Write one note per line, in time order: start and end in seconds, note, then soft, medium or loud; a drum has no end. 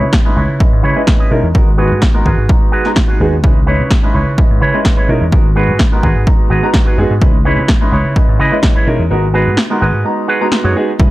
0.00 0.11 C#3 medium
0.00 0.13 E4 loud
0.00 0.13 B4 medium
0.00 0.13 C#5 loud
0.13 kick loud
0.13 snare loud
0.25 0.38 G#3 medium
0.25 0.38 C#4 medium
0.25 0.38 D#4 medium
0.25 0.38 E4 medium
0.25 0.38 B4 loud
0.36 0.46 C#2 medium
0.36 0.60 E4 medium
0.36 0.60 B4 medium
0.36 0.61 C#5 medium
0.49 0.58 C#3 medium
0.60 0.93 G#3 medium
0.60 0.93 C#4 medium
0.60 0.94 E4 medium
0.60 0.94 B4 medium
0.60 0.94 D#5 medium
0.60 muted slap bass stroke soft
0.60 kick loud
0.72 0.81 G#2 medium
0.83 0.93 C#3 medium
0.83 1.02 E4 loud
0.83 1.02 B4 loud
0.83 1.02 C#5 loud
0.96 1.28 G#3 medium
0.96 1.28 C#4 medium
0.96 1.29 E4 medium
0.96 1.29 B4 medium
0.96 1.29 D#5 medium
1.07 kick loud
1.07 snare loud
1.19 1.31 E4 medium
1.19 1.31 B4 medium
1.19 1.31 D#5 medium
1.31 1.41 B2 medium
1.31 1.44 G#3 medium
1.31 1.44 C#4 medium
1.31 1.44 D#4 medium
1.31 1.44 E4 medium
1.31 1.45 A#4 loud
1.43 1.52 E2 loud
1.43 muted clean electric guitar stroke soft
1.54 1.92 G#1 medium
1.54 1.68 G#3 medium
1.54 1.68 B3 medium
1.54 1.68 D#4 medium
1.54 1.68 F#4 medium
1.54 1.68 A#4 loud
1.54 kick loud
1.77 1.91 G#3 medium
1.77 1.91 B3 medium
1.77 1.92 D#4 medium
1.77 2.02 F#4 loud
1.77 1.92 F#4 medium
1.77 2.02 G#4 medium
1.77 1.92 B4 medium
1.77 2.02 B4 loud
1.91 2.00 G#2 medium
2.02 kick loud
2.02 snare loud
2.14 2.26 G#3 medium
2.14 2.27 B3 medium
2.14 2.27 D#4 medium
2.14 2.27 F#4 medium
2.14 2.27 A#4 loud
2.25 2.35 G#1 medium
2.25 2.49 F#4 medium
2.25 2.49 G#4 medium
2.25 2.50 B4 medium
2.25 kick medium
2.38 2.47 G#2 medium
2.49 2.82 G#3 medium
2.49 2.82 B3 medium
2.49 2.82 D#4 medium
2.49 2.82 F#4 medium
2.49 2.82 A#5 medium
2.49 kick loud
2.72 2.90 F#4 loud
2.72 2.91 G#4 loud
2.72 2.91 B4 loud
2.85 3.18 G#3 medium
2.85 3.18 B3 medium
2.85 3.18 D#4 medium
2.85 3.18 F#4 medium
2.85 3.18 A#5 medium
2.85 snare soft
2.96 kick loud
2.96 snare loud
3.08 3.20 F#4 medium
3.08 3.20 G#4 medium
3.08 3.20 B4 medium
3.20 3.39 D#2 medium
3.20 3.33 G#3 medium
3.20 3.33 B3 medium
3.20 3.33 D#4 medium
3.20 3.34 F#4 medium
3.20 3.34 G#4 loud
3.31 muted clean electric guitar stroke soft
3.44 3.57 G#3 medium
3.44 3.57 C#4 medium
3.44 3.57 D#4 medium
3.44 3.57 E4 medium
3.44 3.57 B4 medium
3.44 kick loud
3.66 3.81 G#3 medium
3.66 3.81 C#4 medium
3.66 3.81 D#4 medium
3.66 3.91 E4 loud
3.66 3.81 E4 medium
3.66 3.91 B4 medium
3.66 3.91 C#5 loud
3.66 3.81 C#5 medium
3.80 3.89 C#3 medium
3.91 kick loud
3.91 snare loud
4.03 4.16 G#3 medium
4.03 4.16 C#4 medium
4.03 4.16 D#4 medium
4.03 4.16 E4 medium
4.03 4.16 B4 loud
4.14 4.24 C#2 medium
4.14 4.38 E4 medium
4.14 4.38 B4 medium
4.14 4.39 C#5 medium
4.26 4.36 C#3 medium
4.38 4.71 G#3 medium
4.38 4.71 C#4 medium
4.38 4.71 E4 medium
4.38 4.72 B4 medium
4.38 4.71 D#5 medium
4.38 muted slap bass stroke soft
4.38 kick loud
4.50 4.59 G#2 medium
4.61 4.71 C#3 medium
4.61 4.79 E4 loud
4.61 4.80 B4 medium
4.61 4.80 C#5 loud
4.74 5.06 G#3 medium
4.74 5.06 C#4 medium
4.74 5.07 E4 medium
4.74 5.07 B4 medium
4.74 5.07 D#5 medium
4.85 kick loud
4.85 snare loud
4.97 5.09 E4 medium
4.97 5.09 B4 medium
4.97 5.09 C#5 medium
5.09 5.19 B2 medium
5.09 5.22 G#3 medium
5.09 5.22 C#4 medium
5.09 5.22 D#4 medium
5.09 5.22 E4 medium
5.09 5.23 A#4 loud
5.20 5.30 E2 loud
5.20 muted clean electric guitar stroke soft
5.32 5.70 G#1 medium
5.32 5.46 G#3 medium
5.32 5.46 B3 medium
5.32 5.46 D#4 medium
5.32 5.46 F#4 medium
5.32 5.46 A#4 medium
5.32 kick loud
5.55 5.69 G#3 medium
5.55 5.69 B3 medium
5.55 5.70 D#4 medium
5.55 5.80 F#4 loud
5.55 5.70 F#4 medium
5.55 5.80 G#4 medium
5.55 5.70 B4 medium
5.55 5.80 B4 loud
5.68 5.77 G#2 medium
5.79 kick loud
5.79 snare loud
5.92 6.04 G#3 medium
5.92 6.05 B3 medium
5.92 6.05 D#4 medium
5.92 6.05 F#4 medium
5.92 6.05 A#4 loud
6.03 6.13 G#1 medium
6.03 6.27 F#4 medium
6.03 6.27 G#4 medium
6.03 6.27 B4 medium
6.03 kick medium
6.15 6.25 G#2 medium
6.27 6.60 G#3 medium
6.27 6.60 B3 medium
6.27 6.60 D#4 medium
6.27 6.61 F#4 medium
6.27 6.61 A#5 medium
6.27 kick loud
6.50 6.60 G#1 medium
6.50 6.68 F#4 loud
6.50 6.69 G#4 loud
6.50 6.69 B4 loud
6.63 6.95 G#3 medium
6.63 6.95 B3 medium
6.63 6.95 D#4 medium
6.63 6.96 F#4 medium
6.63 6.96 A#5 medium
6.74 kick loud
6.74 snare loud
6.86 6.98 F#4 medium
6.86 6.98 G#4 medium
6.86 6.98 B4 medium
6.98 7.08 F#2 medium
6.98 7.11 G#3 medium
6.98 7.11 B3 medium
6.98 7.11 D#4 medium
6.98 7.11 F#4 medium
6.98 7.12 G#4 loud
7.10 7.19 G#2 medium
7.10 muted clean electric guitar stroke soft
7.21 7.59 C#2 loud
7.21 7.35 G#3 medium
7.21 7.35 C#4 medium
7.21 7.35 D#4 medium
7.21 7.35 E4 medium
7.21 7.35 B4 medium
7.21 kick loud
7.45 7.58 G#3 medium
7.45 7.58 C#4 medium
7.45 7.59 D#4 medium
7.45 7.69 E4 loud
7.45 7.59 E4 medium
7.45 7.69 B4 loud
7.45 7.59 C#5 medium
7.45 7.69 C#5 loud
7.57 7.66 C#3 medium
7.68 kick loud
7.68 snare loud
7.81 7.93 G#3 medium
7.81 7.94 C#4 medium
7.81 7.94 D#4 medium
7.81 7.94 E4 medium
7.81 7.94 B4 loud
7.92 8.02 C#2 medium
7.92 8.16 E4 medium
7.92 8.16 B4 medium
7.92 8.17 C#5 medium
8.05 8.14 C#3 medium
8.16 8.49 G#3 medium
8.16 8.49 C#4 medium
8.16 8.49 E4 medium
8.16 8.50 B4 medium
8.16 8.49 D#5 medium
8.16 muted slap bass stroke soft
8.16 kick loud
8.28 8.37 G#2 medium
8.39 8.49 C#3 medium
8.39 8.58 E4 loud
8.39 8.58 B4 loud
8.39 8.58 D#5 loud
8.52 8.84 G#3 medium
8.52 8.84 C#4 medium
8.52 8.85 E4 medium
8.52 8.85 B4 medium
8.52 8.84 D#5 medium
8.63 kick loud
8.63 snare loud
8.75 8.87 E4 medium
8.75 8.87 B4 medium
8.75 8.88 C#5 medium
8.87 8.97 B2 medium
8.87 9.00 G#3 medium
8.87 9.00 C#4 medium
8.87 9.00 D#4 medium
8.87 9.00 E4 medium
8.87 9.00 A#4 loud
8.99 9.08 E2 loud
8.99 muted clean electric guitar stroke soft
9.10 9.48 G#1 loud
9.10 9.24 G#3 medium
9.10 9.24 B3 medium
9.10 9.24 D#4 medium
9.10 9.24 F#4 medium
9.10 9.24 A#4 medium
9.34 9.47 G#3 medium
9.34 9.47 B3 medium
9.34 9.48 D#4 medium
9.34 9.58 F#4 loud
9.34 9.48 F#4 medium
9.34 9.58 G#4 medium
9.34 9.48 B4 medium
9.34 9.58 B4 loud
9.46 9.55 G#2 medium
9.57 snare loud
9.70 9.83 G#3 medium
9.70 9.83 B3 medium
9.70 9.83 D#4 medium
9.70 9.83 F#4 medium
9.70 9.83 A#4 loud
9.81 9.91 G#1 medium
9.81 10.05 F#4 medium
9.81 10.05 G#4 medium
9.81 10.06 B4 medium
9.94 10.03 G#2 medium
10.05 10.38 G#3 medium
10.05 10.38 B3 medium
10.05 10.38 D#4 medium
10.05 10.38 F#4 medium
10.05 10.38 A#5 medium
10.28 10.46 F#4 loud
10.28 10.47 G#4 loud
10.28 10.47 B4 loud
10.41 10.73 G#3 medium
10.41 10.73 B3 medium
10.41 10.74 D#4 medium
10.41 10.74 F#4 medium
10.41 10.74 A#5 medium
10.52 snare loud
10.64 10.73 F#2 medium
10.64 10.76 F#4 medium
10.64 10.76 G#4 medium
10.64 10.76 C#5 medium
10.76 10.89 G#3 medium
10.76 10.89 B3 medium
10.76 10.89 D#4 medium
10.76 10.90 F#4 medium
10.76 10.90 G#4 loud
10.87 muted clean electric guitar stroke soft
10.99 11.11 C#2 loud
10.99 11.11 G#3 medium
10.99 11.11 C#4 medium
10.99 11.11 D#4 medium
10.99 11.11 E4 medium
10.99 11.11 B4 loud
10.99 kick loud
10.99 high conga medium
10.99 maracas soft